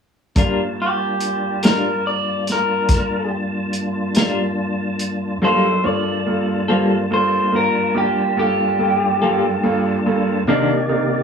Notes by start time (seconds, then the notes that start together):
0.35 G2 G3 A#3 D4 F4 A#4 A5, kick, closed hi-hat
0.82 G4
1.21 closed hi-hat
1.63 G3 D4 F4 A#4, snare, closed hi-hat
2.07 D5
2.47 snare, closed hi-hat
2.52 A#4
2.89 kick, snare, closed hi-hat
3.73 closed hi-hat
4.15 G3 D4 F4 A#4, snare, closed hi-hat
4.99 closed hi-hat
5.42 G2 F#3 G3 A#3 D#4 F4 A4 C5
5.84 G2 A#3 D4 F4 A4 D5 A5
6.26 G2 A#3 F4 A4
6.68 G2 G3 A#3 F4 A4 C5
7.11 G2 A#3 F4 A4 C5
7.52 G2 A#3 F4 A#4
7.94 G2 A#3 F4 G4
8.37 G2 A#3 F4 G4 A4
8.79 G2 A#3 F4 A4
9.21 G2 G3 A#3 F4 A4
9.63 G2 A#3 F4 A4
10.06 G2 A#3 F4 A4
10.47 C3 D#3 A#3 D4 D#4 G4 A#4 D5
10.89 C3 D4 D#4 A#4